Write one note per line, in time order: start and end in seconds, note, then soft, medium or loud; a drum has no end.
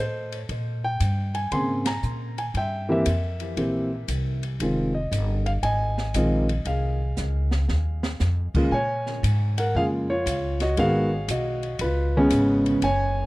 0.00 0.47 A2 medium
0.00 0.47 A4 medium
0.00 0.39 C5 medium
0.32 ride soft
0.49 0.99 A#2 medium
0.49 kick soft
0.49 ride soft
0.84 1.32 G5 medium
1.00 1.50 G2 medium
1.00 kick soft
1.00 hi-hat pedal soft
1.00 ride medium
1.35 1.51 G#5 medium
1.35 ride soft
1.52 2.02 G#2 medium
1.52 1.83 C#3 soft
1.52 1.83 A#3 soft
1.52 1.84 C4 soft
1.52 1.84 G#4 soft
1.52 2.37 G#5 medium
1.52 1.84 C6 medium
1.52 kick soft
1.52 ride soft
1.86 2.34 A#5 medium
1.86 snare medium
1.86 ride medium
2.03 2.53 A#2 medium
2.03 hi-hat pedal soft
2.38 2.44 G#5 medium
2.38 ride soft
2.54 3.04 G2 medium
2.54 2.90 E5 medium
2.54 2.88 G5 medium
2.54 kick soft
2.54 ride soft
2.89 3.05 E3 medium
2.89 3.04 A#3 medium
2.89 3.05 C4 medium
2.89 3.05 G4 medium
2.89 4.41 E5 medium
2.93 4.41 A#4 soft
3.06 3.56 F2 medium
3.06 kick soft
3.06 hi-hat pedal soft
3.06 ride medium
3.40 ride soft
3.57 4.07 A#1 medium
3.57 3.88 E3 soft
3.57 3.89 A#3 soft
3.57 3.89 C4 medium
3.57 3.89 G4 medium
3.57 kick soft
3.57 ride soft
4.08 4.58 C2 medium
4.08 kick soft
4.08 hi-hat pedal medium
4.08 ride medium
4.43 ride soft
4.60 5.10 F1 medium
4.60 4.92 D#3 soft
4.60 4.92 G#3 soft
4.60 4.92 C4 soft
4.60 4.92 F4 medium
4.60 kick soft
4.60 ride medium
4.95 5.42 D#5 medium
5.12 5.62 G1 medium
5.12 kick soft
5.12 hi-hat pedal medium
5.12 ride medium
5.46 5.51 F5 medium
5.46 ride soft
5.63 6.13 G#1 medium
5.63 6.14 D#5 medium
5.63 6.11 G#5 medium
5.63 kick soft
5.63 ride medium
5.98 snare soft
6.14 6.64 A#1 medium
6.14 6.46 D#3 medium
6.14 6.46 G#3 medium
6.14 6.46 C4 medium
6.14 6.47 F4 medium
6.14 6.63 D#5 medium
6.14 kick soft
6.14 hi-hat pedal medium
6.14 ride medium
6.49 ride soft
6.65 7.15 C2 medium
6.65 8.17 G#4 medium
6.65 8.17 F5 medium
6.65 kick soft
6.65 ride soft
7.17 7.68 C#2 medium
7.17 snare soft
7.17 hi-hat pedal medium
7.51 snare medium
7.68 8.19 D#2 medium
7.68 snare medium
8.03 snare medium
8.20 8.52 F2 medium
8.20 snare medium
8.20 hi-hat pedal medium
8.54 8.71 C#3 medium
8.54 8.71 G#3 medium
8.54 8.71 A#3 medium
8.54 8.71 F4 medium
8.54 muted upright bass stroke soft
8.54 kick medium
8.54 crash medium
8.71 9.21 A#2 medium
8.71 9.21 C#5 medium
8.71 9.20 G#5 medium
9.06 snare soft
9.23 9.73 G#2 loud
9.23 kick soft
9.23 hi-hat pedal medium
9.23 ride medium
9.58 9.75 A#4 medium
9.58 9.74 F#5 medium
9.58 ride medium
9.75 10.25 F2 medium
9.75 10.06 C#3 medium
9.75 10.06 G#3 soft
9.75 10.06 A#3 soft
9.75 10.07 F4 medium
9.75 9.85 G#4 medium
9.75 9.84 F5 loud
9.75 kick soft
10.10 10.58 F4 medium
10.10 10.57 C#5 medium
10.26 10.76 C#2 medium
10.26 kick soft
10.26 hi-hat pedal medium
10.26 ride medium
10.60 10.77 F#4 medium
10.60 10.79 D#5 medium
10.60 snare soft
10.60 ride medium
10.77 11.27 G#1 medium
10.77 11.09 D#3 medium
10.77 11.09 G#3 medium
10.77 11.09 B3 medium
10.77 11.09 F#4 medium
10.77 11.26 G#4 medium
10.77 11.26 F5 loud
10.77 kick soft
10.77 ride medium
11.28 11.79 B1 medium
11.28 11.78 F#4 medium
11.28 11.78 D#5 medium
11.28 kick soft
11.28 hi-hat pedal medium
11.28 ride medium
11.63 ride soft
11.79 12.30 C#2 medium
11.79 12.29 F4 medium
11.79 12.29 B4 medium
11.79 kick soft
11.79 ride medium
12.17 12.81 C#3 medium
12.17 12.81 G#3 medium
12.17 12.81 B3 medium
12.17 12.81 C#4 loud
12.30 12.81 G#1 loud
12.30 kick soft
12.30 hi-hat pedal medium
12.30 ride medium
12.66 ride soft
12.82 13.26 F#1 medium
12.82 13.26 C#5 medium
12.82 13.26 G#5 loud
12.82 kick soft
12.82 ride medium